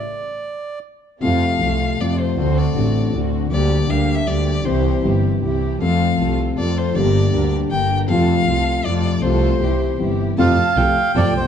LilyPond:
<<
  \new Staff \with { instrumentName = "Bandoneon" } { \time 3/4 \key f \major \tempo 4 = 157 d''2 r4 | r2. | r2. | r2. |
r2. | r2. | r2. | r2. |
r2. | f''2 d''8 c''8 | }
  \new Staff \with { instrumentName = "Violin" } { \time 3/4 \key f \major r2. | f''2 d''8 c''8 | c''8 d''4. r4 | d''4 \tuplet 3/2 { f''4 e''8 } d''4 |
c''4 r2 | f''4. r8 d''8 c''8 | d''4. r8 g''8. r16 | f''2 d''4 |
c''2 r4 | a''4 g''2 | }
  \new Staff \with { instrumentName = "String section" } { \time 3/4 \key f \major r2. | <a c' f'>4 <a c' f'>4 <a c' f'>4 | <c' d' fis'>4 <c' d' fis'>4 <c' d' fis'>4 | <bes d' g'>4 <bes d' g'>4 <bes d' g'>4 |
<c' e' g'>4 <c' e' g'>4 <c' e' g'>4 | <c' f' a'>4 <c' f' a'>4 <c' f' a'>4 | <d' g' bes'>4 <d' g' bes'>4 <d' g' bes'>4 | <c' f' a'>4 <c' f' a'>4 <c' f' a'>4 |
<c' f' a'>4 <c' e' g'>4 <c' e' g'>4 | <c' f' a'>8 r8 <c' f' a'>8 r8 <c' f' a'>8 r8 | }
  \new Staff \with { instrumentName = "Grand piano" } { \clef bass \time 3/4 \key f \major r2. | <f, c f a f'>4 <c, c f a f'>4 <f, c f a f'>4 | <d, d a c' fis'>4 <a,, a, d a c' fis'>4 <d, d a c' fis'>4 | <d, d g bes g'>4 <d, d g bes g'>4 <d, d g bes g'>4 |
<c, c e g c' g'>4 <g,, g, e g c' g'>4 <c, c e g c' g'>4 | <f, f a c' a'>4 <c, c f a c' a'>4 <f, f a c' a'>4 | <g,, g, d g bes g'>4 <d, d g bes g'>4 <g,, g, d g bes g'>4 | <f, c f a f'>4 <c, c f a f'>4 <f, c f a f'>4 |
<c, c f a f'>4 <c, c e g e'>4 <g,, g, c e g e'>4 | <f, c f a f'>8 r8 <c, c f a f'>8 r8 <f, c f a f'>8 r32 b,,32 c,32 r32 | }
  \new Staff \with { instrumentName = "Double bass" } { \clef bass \time 3/4 \key f \major r2. | f,4 c,4 f,4 | d,4 a,,4 d,4 | d,4 d,4 d,4 |
c,4 g,,4 c,4 | f,4 c,4 f,4 | g,,4 d,4 g,,4 | f,4 c,4 f,4 |
c,4 c,4 g,,4 | f,8 r8 c,8 r8 f,8 c,8 | }
>>